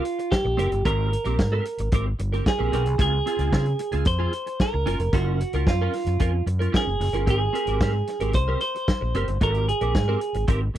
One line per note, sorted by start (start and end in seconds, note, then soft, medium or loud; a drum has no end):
0.00 0.33 F4 medium
0.00 muted clean electric guitar stroke soft
0.05 closed hi-hat medium
0.19 muted clean electric guitar stroke soft
0.19 closed hi-hat soft
0.31 0.85 G4 loud
0.31 kick medium
0.31 snare loud
0.45 0.54 A#1 medium
0.45 muted clean electric guitar stroke soft
0.57 0.68 F#1 loud
0.57 0.72 C4 medium
0.57 0.71 G4 medium
0.57 0.70 A#4 medium
0.57 closed hi-hat medium
0.71 0.81 G1 medium
0.71 muted clean electric guitar stroke medium
0.71 closed hi-hat soft
0.85 1.14 G#1 loud
0.85 1.10 C4 medium
0.85 1.10 G4 medium
0.85 1.89 A#4 medium
0.85 1.10 A#4 medium
0.85 kick loud
0.85 closed hi-hat medium
1.11 muted clean electric guitar stroke soft
1.11 closed hi-hat medium
1.25 1.35 A#1 medium
1.25 1.37 C4 soft
1.25 1.37 G4 medium
1.25 1.36 A#4 medium
1.25 closed hi-hat soft
1.38 1.58 G#2 loud
1.38 muted clean electric guitar stroke soft
1.38 kick loud
1.38 snare loud
1.52 1.64 C4 medium
1.52 1.65 G4 medium
1.52 1.65 A#4 medium
1.65 muted clean electric guitar stroke soft
1.65 closed hi-hat medium
1.78 1.89 G#1 medium
1.78 muted clean electric guitar stroke soft
1.78 closed hi-hat soft
1.92 2.11 G#1 medium
1.92 2.07 C4 medium
1.92 2.07 G4 medium
1.92 2.05 A#4 medium
1.92 kick loud
1.92 closed hi-hat medium
2.07 muted clean electric guitar stroke soft
2.19 2.38 G1 medium
2.19 muted clean electric guitar stroke soft
2.19 closed hi-hat medium
2.32 2.43 C4 soft
2.32 2.44 G4 medium
2.32 2.44 A#4 medium
2.32 closed hi-hat soft
2.44 3.00 G#4 medium
2.44 muted clean electric guitar stroke soft
2.44 kick loud
2.44 snare loud
2.59 2.69 A#1 medium
2.59 2.71 C4 medium
2.59 2.70 G4 medium
2.59 2.70 A#4 medium
2.72 2.87 B1 loud
2.72 2.87 C4 medium
2.72 2.85 G4 medium
2.72 2.84 A#4 loud
2.72 closed hi-hat medium
2.85 2.96 C2 medium
2.85 muted clean electric guitar stroke soft
2.85 closed hi-hat soft
2.98 3.18 C#2 loud
2.98 3.13 C4 medium
2.98 3.12 F4 medium
2.98 3.11 G#4 medium
2.98 4.07 G#4 medium
2.98 kick loud
2.98 closed hi-hat medium
3.12 muted clean electric guitar stroke soft
3.26 3.37 C4 medium
3.26 3.38 F4 medium
3.26 3.38 G#4 medium
3.26 closed hi-hat medium
3.39 3.48 C#2 medium
3.39 3.51 C4 medium
3.39 3.51 F4 medium
3.39 3.51 G#4 medium
3.39 closed hi-hat soft
3.52 3.71 C#3 medium
3.52 3.67 C4 medium
3.52 3.66 F4 medium
3.52 3.65 G#4 loud
3.52 kick loud
3.52 snare loud
3.66 muted clean electric guitar stroke soft
3.66 closed hi-hat soft
3.79 muted clean electric guitar stroke soft
3.79 closed hi-hat medium
3.92 4.02 C#2 medium
3.92 4.05 C4 soft
3.92 4.04 F4 medium
3.92 4.04 G#4 medium
3.92 closed hi-hat soft
4.05 4.25 F2 medium
4.05 4.61 C5 loud
4.05 muted clean electric guitar stroke soft
4.05 kick loud
4.05 closed hi-hat medium
4.19 4.32 C4 medium
4.19 4.33 F4 medium
4.19 4.33 G#4 medium
4.33 muted clean electric guitar stroke soft
4.33 closed hi-hat medium
4.46 muted clean electric guitar stroke soft
4.46 closed hi-hat soft
4.60 5.16 A#4 loud
4.60 kick loud
4.60 snare loud
4.73 4.83 C#2 medium
4.73 muted clean electric guitar stroke soft
4.86 4.96 F#1 medium
4.86 5.01 C#4 medium
4.86 5.01 F4 medium
4.86 4.99 A#4 loud
4.86 closed hi-hat medium
4.99 5.09 F1 medium
4.99 muted clean electric guitar stroke soft
4.99 closed hi-hat soft
5.13 5.41 F#1 loud
5.13 5.38 C#4 medium
5.13 5.38 F4 medium
5.13 5.68 F#4 medium
5.13 5.38 A#4 medium
5.13 kick loud
5.13 closed hi-hat medium
5.41 muted clean electric guitar stroke soft
5.41 closed hi-hat medium
5.53 5.63 C#2 medium
5.53 5.66 C#4 soft
5.53 5.66 F4 medium
5.53 5.65 A#4 medium
5.53 closed hi-hat soft
5.67 5.86 F#2 loud
5.67 6.44 F4 medium
5.67 muted clean electric guitar stroke soft
5.67 kick loud
5.67 snare loud
5.81 5.93 C#4 medium
5.81 5.94 F4 medium
5.81 5.94 A#4 medium
5.93 muted clean electric guitar stroke soft
5.93 snare soft
5.93 open hi-hat medium
6.06 6.16 F#2 medium
6.06 muted clean electric guitar stroke soft
6.06 closed hi-hat soft
6.20 6.39 F2 medium
6.20 6.35 C#4 medium
6.20 6.33 F4 medium
6.20 6.32 A#4 medium
6.20 kick loud
6.20 closed hi-hat medium
6.33 muted clean electric guitar stroke soft
6.46 6.65 F#2 medium
6.46 muted clean electric guitar stroke soft
6.46 closed hi-hat medium
6.59 6.71 C#4 soft
6.59 6.72 F4 soft
6.59 6.71 A#4 medium
6.59 closed hi-hat soft
6.72 6.88 C#4 medium
6.72 6.85 F4 medium
6.72 6.84 A#4 medium
6.72 kick loud
6.72 snare loud
6.76 7.29 G#4 medium
6.86 6.96 F#1 medium
6.86 muted clean electric guitar stroke soft
7.00 7.10 F#1 medium
7.00 muted clean electric guitar stroke soft
7.00 open hi-hat medium
7.13 7.27 G1 medium
7.13 7.26 C#4 soft
7.13 7.26 F4 medium
7.13 7.25 A#4 medium
7.13 closed hi-hat soft
7.26 7.46 G#1 loud
7.26 7.41 C4 medium
7.26 7.41 G4 medium
7.26 7.39 A#4 medium
7.26 kick loud
7.26 closed hi-hat medium
7.30 8.32 G#4 medium
7.41 muted clean electric guitar stroke soft
7.53 7.65 C4 medium
7.53 7.65 G4 medium
7.53 7.66 A#4 medium
7.53 closed hi-hat medium
7.67 7.77 G#1 medium
7.67 7.79 C4 soft
7.67 7.79 G4 medium
7.67 7.79 A#4 medium
7.67 closed hi-hat soft
7.81 8.00 G#2 medium
7.81 7.95 C4 medium
7.81 7.94 G4 medium
7.81 7.92 A#4 loud
7.81 kick loud
7.81 snare loud
7.94 muted clean electric guitar stroke medium
8.07 muted clean electric guitar stroke soft
8.07 snare soft
8.07 closed hi-hat medium
8.20 8.30 G#1 medium
8.20 8.33 C4 soft
8.20 8.32 G4 medium
8.20 8.32 A#4 medium
8.20 closed hi-hat soft
8.33 8.53 C2 medium
8.33 8.60 C5 loud
8.33 muted clean electric guitar stroke soft
8.33 kick loud
8.33 closed hi-hat medium
8.48 8.60 C4 medium
8.48 8.61 G4 medium
8.48 8.61 A#4 medium
8.61 9.37 C5 loud
8.61 muted clean electric guitar stroke soft
8.61 closed hi-hat medium
8.75 muted clean electric guitar stroke soft
8.75 closed hi-hat soft
8.88 kick loud
8.88 snare loud
9.01 9.11 A#1 medium
9.01 muted clean electric guitar stroke soft
9.15 9.24 F#1 medium
9.15 9.29 C4 medium
9.15 9.28 G4 medium
9.15 9.27 A#4 medium
9.15 closed hi-hat medium
9.28 9.38 G1 medium
9.28 muted clean electric guitar stroke soft
9.28 closed hi-hat soft
9.41 9.70 G#1 loud
9.41 9.66 C4 medium
9.41 9.66 G4 medium
9.41 9.66 A#4 medium
9.41 9.68 A#4 medium
9.41 kick loud
9.41 closed hi-hat medium
9.54 closed hi-hat soft
9.69 10.45 G#4 medium
9.69 muted clean electric guitar stroke soft
9.69 closed hi-hat medium
9.81 9.91 A#1 medium
9.81 9.93 C4 medium
9.81 9.93 G4 medium
9.81 9.93 A#4 medium
9.81 closed hi-hat soft
9.95 10.14 G#2 loud
9.95 muted clean electric guitar stroke soft
9.95 kick loud
9.95 snare loud
10.08 10.19 C4 medium
10.08 10.20 G4 medium
10.08 10.21 A#4 medium
10.21 muted clean electric guitar stroke soft
10.21 closed hi-hat medium
10.34 10.44 G#1 medium
10.34 muted clean electric guitar stroke soft
10.34 closed hi-hat soft
10.48 10.67 G#1 medium
10.48 10.63 C4 medium
10.48 10.61 G4 medium
10.48 10.60 A#4 medium
10.48 kick loud
10.48 closed hi-hat medium
10.61 muted clean electric guitar stroke soft
10.74 10.78 G1 medium
10.74 muted clean electric guitar stroke soft